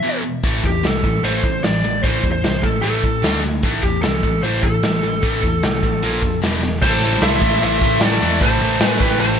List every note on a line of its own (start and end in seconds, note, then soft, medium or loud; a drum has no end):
0.00 0.22 E2 medium
0.00 0.22 B2 medium
0.00 0.23 E3 medium
0.00 0.20 E5 medium
0.23 0.41 E2 medium
0.23 0.41 B2 medium
0.43 0.62 A1 medium
0.43 0.62 A2 medium
0.43 0.62 E3 medium
0.43 0.63 A3 medium
0.43 kick medium
0.43 closed hi-hat medium
0.63 0.82 E2 medium
0.63 0.81 A2 medium
0.63 0.82 E3 medium
0.63 0.84 G4 medium
0.63 kick medium
0.63 closed hi-hat medium
0.83 1.02 C2 medium
0.83 1.01 A2 medium
0.83 1.02 E3 medium
0.83 1.22 A4 medium
0.83 snare medium
0.83 closed hi-hat medium
1.04 1.22 A1 medium
1.04 1.22 A2 medium
1.04 1.22 E3 medium
1.04 kick medium
1.04 closed hi-hat soft
1.23 1.42 A1 medium
1.23 1.43 A2 medium
1.23 1.43 E3 medium
1.23 1.43 A3 medium
1.23 1.64 C5 medium
1.23 closed hi-hat medium
1.44 1.62 A1 medium
1.44 1.62 A2 medium
1.44 1.62 E3 medium
1.44 kick medium
1.44 closed hi-hat medium
1.63 2.01 A1 medium
1.63 1.81 A2 medium
1.63 1.82 E3 medium
1.63 2.01 D5 medium
1.63 snare loud
1.63 closed hi-hat medium
1.84 2.02 A2 medium
1.84 2.02 E3 medium
1.84 closed hi-hat medium
2.03 2.22 A1 medium
2.03 2.22 A2 medium
2.03 2.23 E3 medium
2.03 2.23 A3 medium
2.03 2.30 C5 medium
2.03 kick medium
2.03 closed hi-hat medium
2.24 2.42 E2 medium
2.24 2.42 A2 medium
2.24 2.42 E3 medium
2.24 kick medium
2.24 closed hi-hat medium
2.32 2.64 C5 medium
2.44 2.62 C2 medium
2.44 2.62 A2 medium
2.44 2.62 E3 medium
2.44 snare medium
2.44 closed hi-hat medium
2.63 2.82 A1 medium
2.63 2.82 A2 medium
2.63 2.82 E3 medium
2.63 2.81 A4 medium
2.63 kick medium
2.63 closed hi-hat soft
2.83 3.02 A1 medium
2.83 3.02 A2 medium
2.83 3.03 E3 medium
2.83 3.03 A3 medium
2.83 3.39 A4 medium
2.83 closed hi-hat medium
3.03 3.22 A1 medium
3.03 3.21 A2 medium
3.03 3.22 E3 medium
3.03 kick medium
3.03 closed hi-hat medium
3.23 3.60 D2 medium
3.23 3.43 D3 medium
3.23 3.43 A3 medium
3.23 3.43 D4 medium
3.23 snare medium
3.23 closed hi-hat medium
3.43 3.62 D3 medium
3.43 3.62 A3 medium
3.43 closed hi-hat medium
3.63 3.82 A1 medium
3.63 3.82 A2 medium
3.63 3.82 E3 medium
3.63 3.83 A3 medium
3.63 kick loud
3.63 closed hi-hat medium
3.83 4.02 E2 medium
3.83 4.01 A2 medium
3.83 4.02 E3 medium
3.83 4.02 G4 medium
3.83 kick medium
3.83 closed hi-hat medium
4.02 4.22 C2 medium
4.02 4.21 A2 medium
4.02 4.21 E3 medium
4.02 4.40 A4 medium
4.02 snare loud
4.02 closed hi-hat medium
4.23 4.42 A1 medium
4.23 4.42 A2 medium
4.23 4.42 E3 medium
4.23 kick medium
4.23 closed hi-hat medium
4.43 4.62 A1 medium
4.43 4.62 A2 medium
4.43 4.63 E3 medium
4.43 4.63 A3 loud
4.43 4.64 C5 loud
4.43 closed hi-hat medium
4.62 4.82 A1 medium
4.62 4.81 A2 medium
4.62 4.82 E3 medium
4.62 6.38 A4 medium
4.62 kick medium
4.62 closed hi-hat medium
4.83 5.20 A1 medium
4.83 5.02 A2 medium
4.83 5.02 E3 medium
4.83 snare medium
4.83 closed hi-hat medium
5.03 5.21 A2 medium
5.03 5.22 E3 medium
5.03 closed hi-hat soft
5.23 5.42 A1 medium
5.23 5.42 A2 medium
5.23 5.42 E3 medium
5.23 5.43 A3 loud
5.23 kick loud
5.23 closed hi-hat medium
5.43 5.61 E2 medium
5.43 5.61 A2 medium
5.43 5.61 E3 medium
5.43 kick medium
5.43 closed hi-hat medium
5.63 5.81 C2 medium
5.63 5.81 A2 medium
5.63 5.81 E3 medium
5.63 snare medium
5.63 closed hi-hat medium
5.83 6.01 A1 medium
5.83 6.01 A2 medium
5.83 6.01 E3 medium
5.83 kick medium
5.83 closed hi-hat medium
6.02 6.21 A#1 medium
6.02 6.21 A#2 medium
6.02 6.21 F3 medium
6.02 6.22 A#3 medium
6.02 closed hi-hat medium
6.22 6.41 F2 medium
6.22 6.41 A#2 medium
6.22 6.41 F3 medium
6.22 kick medium
6.22 closed hi-hat medium
6.42 6.79 E1 medium
6.42 6.61 E2 medium
6.42 6.61 B2 medium
6.42 6.61 E3 medium
6.42 snare loud
6.42 closed hi-hat medium
6.63 6.81 E2 medium
6.63 6.81 B2 medium
6.63 snare soft
6.81 7.15 A1 loud
6.81 7.01 A2 medium
6.81 7.02 E3 loud
6.81 7.02 A3 loud
6.81 7.20 A4 medium
6.81 7.20 C5 medium
6.81 kick loud
6.81 crash loud
7.02 7.21 A2 medium
7.02 7.22 E3 medium
7.02 7.22 A3 medium
7.02 open hi-hat medium
7.12 snare soft
7.21 7.38 C2 medium
7.21 7.41 A2 medium
7.21 7.42 E3 medium
7.21 7.42 A3 medium
7.21 7.59 C5 medium
7.21 7.60 E5 loud
7.21 snare loud
7.21 open hi-hat medium
7.41 7.58 A1 medium
7.41 7.61 A2 medium
7.41 7.61 E3 medium
7.41 7.61 A3 loud
7.41 kick medium
7.41 open hi-hat medium
7.61 7.78 A1 loud
7.61 7.81 A2 loud
7.61 7.81 E3 medium
7.61 7.81 A3 loud
7.61 7.99 C5 medium
7.61 8.00 E5 loud
7.61 open hi-hat medium
7.81 7.98 A1 medium
7.81 8.01 A2 medium
7.81 8.02 E3 medium
7.81 8.02 A3 medium
7.81 kick loud
7.81 open hi-hat medium
8.00 8.18 A1 loud
8.00 8.20 A2 medium
8.00 8.20 E3 medium
8.00 8.21 A3 medium
8.00 8.39 A4 medium
8.00 8.42 D5 loud
8.00 snare loud
8.00 open hi-hat medium
8.21 8.38 E2 medium
8.21 8.39 A2 medium
8.21 8.40 E3 medium
8.21 8.40 A3 loud
8.21 open hi-hat medium
8.41 8.57 A1 loud
8.41 8.59 A2 loud
8.41 8.60 E3 loud
8.41 8.60 A3 loud
8.41 8.82 A4 loud
8.41 8.85 C5 loud
8.41 kick loud
8.41 open hi-hat medium
8.60 8.78 A1 medium
8.60 8.80 A2 medium
8.60 8.80 E3 loud
8.60 8.80 A3 medium
8.60 open hi-hat medium
8.80 8.97 A2 medium
8.80 8.99 A2 medium
8.80 9.00 E3 medium
8.80 9.00 A3 loud
8.80 8.98 G#4 loud
8.80 snare loud
8.80 open hi-hat medium
8.85 8.99 B4 loud
9.00 9.17 A1 medium
9.00 9.19 A2 loud
9.00 9.19 E3 loud
9.00 9.19 A3 loud
9.00 9.20 G4 medium
9.00 9.20 B4 medium
9.00 kick medium
9.00 open hi-hat medium
9.20 9.37 A1 loud
9.20 9.39 A2 medium
9.20 9.39 E3 loud
9.20 9.39 A3 loud
9.20 9.40 A4 medium
9.20 9.40 C5 loud
9.20 open hi-hat medium